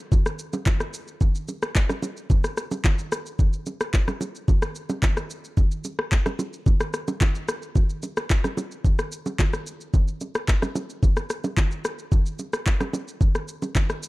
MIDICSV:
0, 0, Header, 1, 2, 480
1, 0, Start_track
1, 0, Tempo, 545455
1, 1065, Time_signature, 4, 2, 24, 8
1, 12393, End_track
2, 0, Start_track
2, 0, Title_t, "Drums"
2, 103, Note_on_c, 9, 36, 116
2, 105, Note_on_c, 9, 64, 77
2, 105, Note_on_c, 9, 82, 71
2, 191, Note_off_c, 9, 36, 0
2, 193, Note_off_c, 9, 64, 0
2, 193, Note_off_c, 9, 82, 0
2, 227, Note_on_c, 9, 82, 60
2, 229, Note_on_c, 9, 37, 94
2, 315, Note_off_c, 9, 82, 0
2, 317, Note_off_c, 9, 37, 0
2, 342, Note_on_c, 9, 82, 96
2, 430, Note_off_c, 9, 82, 0
2, 466, Note_on_c, 9, 82, 67
2, 469, Note_on_c, 9, 61, 76
2, 554, Note_off_c, 9, 82, 0
2, 557, Note_off_c, 9, 61, 0
2, 581, Note_on_c, 9, 82, 74
2, 582, Note_on_c, 9, 36, 103
2, 583, Note_on_c, 9, 39, 88
2, 588, Note_on_c, 9, 60, 77
2, 588, Note_on_c, 9, 64, 76
2, 669, Note_off_c, 9, 82, 0
2, 670, Note_off_c, 9, 36, 0
2, 671, Note_off_c, 9, 39, 0
2, 676, Note_off_c, 9, 60, 0
2, 676, Note_off_c, 9, 64, 0
2, 706, Note_on_c, 9, 82, 55
2, 708, Note_on_c, 9, 37, 91
2, 794, Note_off_c, 9, 82, 0
2, 796, Note_off_c, 9, 37, 0
2, 824, Note_on_c, 9, 82, 117
2, 912, Note_off_c, 9, 82, 0
2, 948, Note_on_c, 9, 82, 52
2, 1036, Note_off_c, 9, 82, 0
2, 1064, Note_on_c, 9, 36, 123
2, 1064, Note_on_c, 9, 64, 79
2, 1064, Note_on_c, 9, 82, 73
2, 1152, Note_off_c, 9, 36, 0
2, 1152, Note_off_c, 9, 64, 0
2, 1152, Note_off_c, 9, 82, 0
2, 1188, Note_on_c, 9, 82, 57
2, 1276, Note_off_c, 9, 82, 0
2, 1303, Note_on_c, 9, 82, 102
2, 1307, Note_on_c, 9, 61, 50
2, 1391, Note_off_c, 9, 82, 0
2, 1395, Note_off_c, 9, 61, 0
2, 1428, Note_on_c, 9, 82, 61
2, 1431, Note_on_c, 9, 37, 111
2, 1516, Note_off_c, 9, 82, 0
2, 1519, Note_off_c, 9, 37, 0
2, 1543, Note_on_c, 9, 60, 84
2, 1543, Note_on_c, 9, 82, 79
2, 1545, Note_on_c, 9, 36, 94
2, 1545, Note_on_c, 9, 39, 97
2, 1631, Note_off_c, 9, 60, 0
2, 1631, Note_off_c, 9, 82, 0
2, 1633, Note_off_c, 9, 36, 0
2, 1633, Note_off_c, 9, 39, 0
2, 1667, Note_on_c, 9, 37, 89
2, 1669, Note_on_c, 9, 61, 84
2, 1669, Note_on_c, 9, 82, 44
2, 1755, Note_off_c, 9, 37, 0
2, 1757, Note_off_c, 9, 61, 0
2, 1757, Note_off_c, 9, 82, 0
2, 1782, Note_on_c, 9, 60, 57
2, 1782, Note_on_c, 9, 61, 82
2, 1785, Note_on_c, 9, 82, 111
2, 1870, Note_off_c, 9, 60, 0
2, 1870, Note_off_c, 9, 61, 0
2, 1873, Note_off_c, 9, 82, 0
2, 1910, Note_on_c, 9, 82, 57
2, 1998, Note_off_c, 9, 82, 0
2, 2023, Note_on_c, 9, 36, 116
2, 2024, Note_on_c, 9, 64, 79
2, 2025, Note_on_c, 9, 82, 66
2, 2111, Note_off_c, 9, 36, 0
2, 2112, Note_off_c, 9, 64, 0
2, 2113, Note_off_c, 9, 82, 0
2, 2147, Note_on_c, 9, 82, 60
2, 2149, Note_on_c, 9, 37, 94
2, 2235, Note_off_c, 9, 82, 0
2, 2237, Note_off_c, 9, 37, 0
2, 2263, Note_on_c, 9, 82, 101
2, 2266, Note_on_c, 9, 37, 92
2, 2351, Note_off_c, 9, 82, 0
2, 2354, Note_off_c, 9, 37, 0
2, 2388, Note_on_c, 9, 61, 79
2, 2388, Note_on_c, 9, 82, 66
2, 2476, Note_off_c, 9, 61, 0
2, 2476, Note_off_c, 9, 82, 0
2, 2502, Note_on_c, 9, 36, 101
2, 2503, Note_on_c, 9, 82, 72
2, 2505, Note_on_c, 9, 39, 89
2, 2506, Note_on_c, 9, 60, 73
2, 2506, Note_on_c, 9, 64, 78
2, 2590, Note_off_c, 9, 36, 0
2, 2591, Note_off_c, 9, 82, 0
2, 2593, Note_off_c, 9, 39, 0
2, 2594, Note_off_c, 9, 60, 0
2, 2594, Note_off_c, 9, 64, 0
2, 2628, Note_on_c, 9, 82, 53
2, 2716, Note_off_c, 9, 82, 0
2, 2745, Note_on_c, 9, 82, 116
2, 2747, Note_on_c, 9, 37, 105
2, 2833, Note_off_c, 9, 82, 0
2, 2835, Note_off_c, 9, 37, 0
2, 2869, Note_on_c, 9, 82, 51
2, 2957, Note_off_c, 9, 82, 0
2, 2983, Note_on_c, 9, 64, 79
2, 2984, Note_on_c, 9, 36, 127
2, 2985, Note_on_c, 9, 82, 73
2, 3071, Note_off_c, 9, 64, 0
2, 3072, Note_off_c, 9, 36, 0
2, 3073, Note_off_c, 9, 82, 0
2, 3108, Note_on_c, 9, 82, 58
2, 3196, Note_off_c, 9, 82, 0
2, 3222, Note_on_c, 9, 82, 97
2, 3227, Note_on_c, 9, 61, 50
2, 3310, Note_off_c, 9, 82, 0
2, 3315, Note_off_c, 9, 61, 0
2, 3348, Note_on_c, 9, 82, 59
2, 3350, Note_on_c, 9, 37, 109
2, 3436, Note_off_c, 9, 82, 0
2, 3438, Note_off_c, 9, 37, 0
2, 3463, Note_on_c, 9, 82, 81
2, 3464, Note_on_c, 9, 60, 83
2, 3465, Note_on_c, 9, 36, 100
2, 3465, Note_on_c, 9, 39, 96
2, 3551, Note_off_c, 9, 82, 0
2, 3552, Note_off_c, 9, 60, 0
2, 3553, Note_off_c, 9, 36, 0
2, 3553, Note_off_c, 9, 39, 0
2, 3589, Note_on_c, 9, 37, 89
2, 3589, Note_on_c, 9, 61, 80
2, 3591, Note_on_c, 9, 82, 44
2, 3677, Note_off_c, 9, 37, 0
2, 3677, Note_off_c, 9, 61, 0
2, 3679, Note_off_c, 9, 82, 0
2, 3702, Note_on_c, 9, 60, 55
2, 3702, Note_on_c, 9, 61, 75
2, 3707, Note_on_c, 9, 82, 110
2, 3790, Note_off_c, 9, 60, 0
2, 3790, Note_off_c, 9, 61, 0
2, 3795, Note_off_c, 9, 82, 0
2, 3830, Note_on_c, 9, 82, 57
2, 3918, Note_off_c, 9, 82, 0
2, 3943, Note_on_c, 9, 36, 120
2, 3944, Note_on_c, 9, 64, 77
2, 3945, Note_on_c, 9, 82, 70
2, 4031, Note_off_c, 9, 36, 0
2, 4032, Note_off_c, 9, 64, 0
2, 4033, Note_off_c, 9, 82, 0
2, 4066, Note_on_c, 9, 82, 59
2, 4068, Note_on_c, 9, 37, 96
2, 4154, Note_off_c, 9, 82, 0
2, 4156, Note_off_c, 9, 37, 0
2, 4182, Note_on_c, 9, 82, 94
2, 4270, Note_off_c, 9, 82, 0
2, 4307, Note_on_c, 9, 82, 65
2, 4308, Note_on_c, 9, 61, 83
2, 4395, Note_off_c, 9, 82, 0
2, 4396, Note_off_c, 9, 61, 0
2, 4422, Note_on_c, 9, 36, 97
2, 4423, Note_on_c, 9, 82, 70
2, 4424, Note_on_c, 9, 39, 90
2, 4424, Note_on_c, 9, 60, 76
2, 4424, Note_on_c, 9, 64, 74
2, 4510, Note_off_c, 9, 36, 0
2, 4511, Note_off_c, 9, 82, 0
2, 4512, Note_off_c, 9, 39, 0
2, 4512, Note_off_c, 9, 60, 0
2, 4512, Note_off_c, 9, 64, 0
2, 4549, Note_on_c, 9, 82, 52
2, 4550, Note_on_c, 9, 37, 94
2, 4637, Note_off_c, 9, 82, 0
2, 4638, Note_off_c, 9, 37, 0
2, 4666, Note_on_c, 9, 82, 115
2, 4754, Note_off_c, 9, 82, 0
2, 4790, Note_on_c, 9, 82, 51
2, 4878, Note_off_c, 9, 82, 0
2, 4902, Note_on_c, 9, 64, 77
2, 4904, Note_on_c, 9, 36, 126
2, 4904, Note_on_c, 9, 82, 73
2, 4990, Note_off_c, 9, 64, 0
2, 4992, Note_off_c, 9, 36, 0
2, 4992, Note_off_c, 9, 82, 0
2, 5028, Note_on_c, 9, 82, 56
2, 5116, Note_off_c, 9, 82, 0
2, 5141, Note_on_c, 9, 82, 99
2, 5146, Note_on_c, 9, 61, 50
2, 5229, Note_off_c, 9, 82, 0
2, 5234, Note_off_c, 9, 61, 0
2, 5269, Note_on_c, 9, 37, 108
2, 5357, Note_off_c, 9, 37, 0
2, 5383, Note_on_c, 9, 82, 81
2, 5384, Note_on_c, 9, 36, 96
2, 5384, Note_on_c, 9, 39, 91
2, 5384, Note_on_c, 9, 60, 84
2, 5471, Note_off_c, 9, 82, 0
2, 5472, Note_off_c, 9, 36, 0
2, 5472, Note_off_c, 9, 39, 0
2, 5472, Note_off_c, 9, 60, 0
2, 5508, Note_on_c, 9, 37, 90
2, 5509, Note_on_c, 9, 61, 86
2, 5510, Note_on_c, 9, 82, 45
2, 5596, Note_off_c, 9, 37, 0
2, 5597, Note_off_c, 9, 61, 0
2, 5598, Note_off_c, 9, 82, 0
2, 5623, Note_on_c, 9, 60, 55
2, 5623, Note_on_c, 9, 61, 80
2, 5626, Note_on_c, 9, 82, 112
2, 5711, Note_off_c, 9, 60, 0
2, 5711, Note_off_c, 9, 61, 0
2, 5714, Note_off_c, 9, 82, 0
2, 5749, Note_on_c, 9, 82, 55
2, 5837, Note_off_c, 9, 82, 0
2, 5863, Note_on_c, 9, 36, 117
2, 5864, Note_on_c, 9, 64, 76
2, 5865, Note_on_c, 9, 82, 69
2, 5951, Note_off_c, 9, 36, 0
2, 5952, Note_off_c, 9, 64, 0
2, 5953, Note_off_c, 9, 82, 0
2, 5987, Note_on_c, 9, 82, 59
2, 5989, Note_on_c, 9, 37, 97
2, 6075, Note_off_c, 9, 82, 0
2, 6077, Note_off_c, 9, 37, 0
2, 6103, Note_on_c, 9, 82, 99
2, 6105, Note_on_c, 9, 37, 92
2, 6191, Note_off_c, 9, 82, 0
2, 6193, Note_off_c, 9, 37, 0
2, 6228, Note_on_c, 9, 82, 69
2, 6230, Note_on_c, 9, 61, 80
2, 6316, Note_off_c, 9, 82, 0
2, 6318, Note_off_c, 9, 61, 0
2, 6343, Note_on_c, 9, 36, 105
2, 6343, Note_on_c, 9, 82, 74
2, 6345, Note_on_c, 9, 39, 89
2, 6348, Note_on_c, 9, 60, 72
2, 6348, Note_on_c, 9, 64, 75
2, 6431, Note_off_c, 9, 36, 0
2, 6431, Note_off_c, 9, 82, 0
2, 6433, Note_off_c, 9, 39, 0
2, 6436, Note_off_c, 9, 60, 0
2, 6436, Note_off_c, 9, 64, 0
2, 6468, Note_on_c, 9, 82, 53
2, 6556, Note_off_c, 9, 82, 0
2, 6585, Note_on_c, 9, 82, 118
2, 6587, Note_on_c, 9, 37, 109
2, 6673, Note_off_c, 9, 82, 0
2, 6675, Note_off_c, 9, 37, 0
2, 6710, Note_on_c, 9, 82, 52
2, 6798, Note_off_c, 9, 82, 0
2, 6824, Note_on_c, 9, 36, 124
2, 6825, Note_on_c, 9, 64, 81
2, 6825, Note_on_c, 9, 82, 72
2, 6912, Note_off_c, 9, 36, 0
2, 6913, Note_off_c, 9, 64, 0
2, 6913, Note_off_c, 9, 82, 0
2, 6948, Note_on_c, 9, 82, 54
2, 7036, Note_off_c, 9, 82, 0
2, 7063, Note_on_c, 9, 82, 98
2, 7068, Note_on_c, 9, 61, 50
2, 7151, Note_off_c, 9, 82, 0
2, 7156, Note_off_c, 9, 61, 0
2, 7189, Note_on_c, 9, 82, 60
2, 7191, Note_on_c, 9, 37, 113
2, 7277, Note_off_c, 9, 82, 0
2, 7279, Note_off_c, 9, 37, 0
2, 7304, Note_on_c, 9, 60, 79
2, 7305, Note_on_c, 9, 36, 98
2, 7305, Note_on_c, 9, 82, 76
2, 7307, Note_on_c, 9, 39, 93
2, 7392, Note_off_c, 9, 60, 0
2, 7393, Note_off_c, 9, 36, 0
2, 7393, Note_off_c, 9, 82, 0
2, 7395, Note_off_c, 9, 39, 0
2, 7429, Note_on_c, 9, 37, 87
2, 7430, Note_on_c, 9, 61, 84
2, 7431, Note_on_c, 9, 82, 45
2, 7517, Note_off_c, 9, 37, 0
2, 7518, Note_off_c, 9, 61, 0
2, 7519, Note_off_c, 9, 82, 0
2, 7544, Note_on_c, 9, 60, 58
2, 7544, Note_on_c, 9, 61, 80
2, 7548, Note_on_c, 9, 82, 111
2, 7632, Note_off_c, 9, 60, 0
2, 7632, Note_off_c, 9, 61, 0
2, 7636, Note_off_c, 9, 82, 0
2, 7669, Note_on_c, 9, 82, 56
2, 7757, Note_off_c, 9, 82, 0
2, 7783, Note_on_c, 9, 64, 74
2, 7784, Note_on_c, 9, 36, 118
2, 7787, Note_on_c, 9, 82, 69
2, 7871, Note_off_c, 9, 64, 0
2, 7872, Note_off_c, 9, 36, 0
2, 7875, Note_off_c, 9, 82, 0
2, 7909, Note_on_c, 9, 82, 60
2, 7910, Note_on_c, 9, 37, 97
2, 7997, Note_off_c, 9, 82, 0
2, 7998, Note_off_c, 9, 37, 0
2, 8025, Note_on_c, 9, 82, 100
2, 8113, Note_off_c, 9, 82, 0
2, 8149, Note_on_c, 9, 61, 78
2, 8149, Note_on_c, 9, 82, 66
2, 8237, Note_off_c, 9, 61, 0
2, 8237, Note_off_c, 9, 82, 0
2, 8264, Note_on_c, 9, 36, 101
2, 8265, Note_on_c, 9, 82, 75
2, 8267, Note_on_c, 9, 39, 89
2, 8267, Note_on_c, 9, 60, 77
2, 8267, Note_on_c, 9, 64, 79
2, 8352, Note_off_c, 9, 36, 0
2, 8353, Note_off_c, 9, 82, 0
2, 8355, Note_off_c, 9, 39, 0
2, 8355, Note_off_c, 9, 60, 0
2, 8355, Note_off_c, 9, 64, 0
2, 8390, Note_on_c, 9, 82, 53
2, 8391, Note_on_c, 9, 37, 91
2, 8478, Note_off_c, 9, 82, 0
2, 8479, Note_off_c, 9, 37, 0
2, 8507, Note_on_c, 9, 82, 119
2, 8595, Note_off_c, 9, 82, 0
2, 8630, Note_on_c, 9, 82, 53
2, 8718, Note_off_c, 9, 82, 0
2, 8744, Note_on_c, 9, 36, 127
2, 8744, Note_on_c, 9, 64, 80
2, 8745, Note_on_c, 9, 82, 71
2, 8832, Note_off_c, 9, 36, 0
2, 8832, Note_off_c, 9, 64, 0
2, 8833, Note_off_c, 9, 82, 0
2, 8869, Note_on_c, 9, 82, 52
2, 8957, Note_off_c, 9, 82, 0
2, 8982, Note_on_c, 9, 82, 99
2, 8987, Note_on_c, 9, 61, 49
2, 9070, Note_off_c, 9, 82, 0
2, 9075, Note_off_c, 9, 61, 0
2, 9107, Note_on_c, 9, 82, 59
2, 9110, Note_on_c, 9, 37, 110
2, 9195, Note_off_c, 9, 82, 0
2, 9198, Note_off_c, 9, 37, 0
2, 9224, Note_on_c, 9, 82, 80
2, 9225, Note_on_c, 9, 36, 101
2, 9225, Note_on_c, 9, 39, 93
2, 9225, Note_on_c, 9, 60, 82
2, 9312, Note_off_c, 9, 82, 0
2, 9313, Note_off_c, 9, 36, 0
2, 9313, Note_off_c, 9, 39, 0
2, 9313, Note_off_c, 9, 60, 0
2, 9348, Note_on_c, 9, 37, 90
2, 9350, Note_on_c, 9, 82, 44
2, 9351, Note_on_c, 9, 61, 82
2, 9436, Note_off_c, 9, 37, 0
2, 9438, Note_off_c, 9, 82, 0
2, 9439, Note_off_c, 9, 61, 0
2, 9464, Note_on_c, 9, 60, 55
2, 9464, Note_on_c, 9, 61, 79
2, 9466, Note_on_c, 9, 82, 107
2, 9552, Note_off_c, 9, 60, 0
2, 9552, Note_off_c, 9, 61, 0
2, 9554, Note_off_c, 9, 82, 0
2, 9590, Note_on_c, 9, 82, 57
2, 9678, Note_off_c, 9, 82, 0
2, 9703, Note_on_c, 9, 36, 118
2, 9706, Note_on_c, 9, 64, 77
2, 9706, Note_on_c, 9, 82, 69
2, 9791, Note_off_c, 9, 36, 0
2, 9794, Note_off_c, 9, 64, 0
2, 9794, Note_off_c, 9, 82, 0
2, 9826, Note_on_c, 9, 82, 58
2, 9828, Note_on_c, 9, 37, 92
2, 9914, Note_off_c, 9, 82, 0
2, 9916, Note_off_c, 9, 37, 0
2, 9943, Note_on_c, 9, 82, 100
2, 9945, Note_on_c, 9, 37, 88
2, 10031, Note_off_c, 9, 82, 0
2, 10033, Note_off_c, 9, 37, 0
2, 10067, Note_on_c, 9, 82, 65
2, 10069, Note_on_c, 9, 61, 80
2, 10155, Note_off_c, 9, 82, 0
2, 10157, Note_off_c, 9, 61, 0
2, 10183, Note_on_c, 9, 36, 105
2, 10184, Note_on_c, 9, 82, 73
2, 10185, Note_on_c, 9, 39, 92
2, 10186, Note_on_c, 9, 60, 75
2, 10186, Note_on_c, 9, 64, 75
2, 10271, Note_off_c, 9, 36, 0
2, 10272, Note_off_c, 9, 82, 0
2, 10273, Note_off_c, 9, 39, 0
2, 10274, Note_off_c, 9, 60, 0
2, 10274, Note_off_c, 9, 64, 0
2, 10307, Note_on_c, 9, 82, 51
2, 10395, Note_off_c, 9, 82, 0
2, 10425, Note_on_c, 9, 82, 120
2, 10427, Note_on_c, 9, 37, 106
2, 10513, Note_off_c, 9, 82, 0
2, 10515, Note_off_c, 9, 37, 0
2, 10549, Note_on_c, 9, 82, 53
2, 10637, Note_off_c, 9, 82, 0
2, 10664, Note_on_c, 9, 36, 127
2, 10664, Note_on_c, 9, 64, 80
2, 10665, Note_on_c, 9, 82, 75
2, 10752, Note_off_c, 9, 36, 0
2, 10752, Note_off_c, 9, 64, 0
2, 10753, Note_off_c, 9, 82, 0
2, 10788, Note_on_c, 9, 82, 53
2, 10876, Note_off_c, 9, 82, 0
2, 10902, Note_on_c, 9, 82, 103
2, 10906, Note_on_c, 9, 61, 51
2, 10990, Note_off_c, 9, 82, 0
2, 10994, Note_off_c, 9, 61, 0
2, 11027, Note_on_c, 9, 82, 59
2, 11030, Note_on_c, 9, 37, 104
2, 11115, Note_off_c, 9, 82, 0
2, 11118, Note_off_c, 9, 37, 0
2, 11143, Note_on_c, 9, 60, 82
2, 11144, Note_on_c, 9, 82, 82
2, 11145, Note_on_c, 9, 36, 99
2, 11146, Note_on_c, 9, 39, 91
2, 11231, Note_off_c, 9, 60, 0
2, 11232, Note_off_c, 9, 82, 0
2, 11233, Note_off_c, 9, 36, 0
2, 11234, Note_off_c, 9, 39, 0
2, 11268, Note_on_c, 9, 37, 88
2, 11269, Note_on_c, 9, 61, 83
2, 11270, Note_on_c, 9, 82, 45
2, 11356, Note_off_c, 9, 37, 0
2, 11357, Note_off_c, 9, 61, 0
2, 11358, Note_off_c, 9, 82, 0
2, 11382, Note_on_c, 9, 60, 56
2, 11382, Note_on_c, 9, 61, 79
2, 11386, Note_on_c, 9, 82, 107
2, 11470, Note_off_c, 9, 60, 0
2, 11470, Note_off_c, 9, 61, 0
2, 11474, Note_off_c, 9, 82, 0
2, 11510, Note_on_c, 9, 82, 58
2, 11598, Note_off_c, 9, 82, 0
2, 11623, Note_on_c, 9, 36, 123
2, 11623, Note_on_c, 9, 64, 75
2, 11625, Note_on_c, 9, 82, 70
2, 11711, Note_off_c, 9, 36, 0
2, 11711, Note_off_c, 9, 64, 0
2, 11713, Note_off_c, 9, 82, 0
2, 11747, Note_on_c, 9, 82, 58
2, 11749, Note_on_c, 9, 37, 91
2, 11835, Note_off_c, 9, 82, 0
2, 11837, Note_off_c, 9, 37, 0
2, 11863, Note_on_c, 9, 82, 101
2, 11951, Note_off_c, 9, 82, 0
2, 11988, Note_on_c, 9, 61, 82
2, 11988, Note_on_c, 9, 82, 68
2, 12076, Note_off_c, 9, 61, 0
2, 12076, Note_off_c, 9, 82, 0
2, 12102, Note_on_c, 9, 36, 102
2, 12104, Note_on_c, 9, 60, 75
2, 12104, Note_on_c, 9, 64, 77
2, 12104, Note_on_c, 9, 82, 75
2, 12105, Note_on_c, 9, 39, 88
2, 12190, Note_off_c, 9, 36, 0
2, 12192, Note_off_c, 9, 60, 0
2, 12192, Note_off_c, 9, 64, 0
2, 12192, Note_off_c, 9, 82, 0
2, 12193, Note_off_c, 9, 39, 0
2, 12228, Note_on_c, 9, 82, 51
2, 12229, Note_on_c, 9, 37, 92
2, 12316, Note_off_c, 9, 82, 0
2, 12317, Note_off_c, 9, 37, 0
2, 12345, Note_on_c, 9, 82, 117
2, 12393, Note_off_c, 9, 82, 0
2, 12393, End_track
0, 0, End_of_file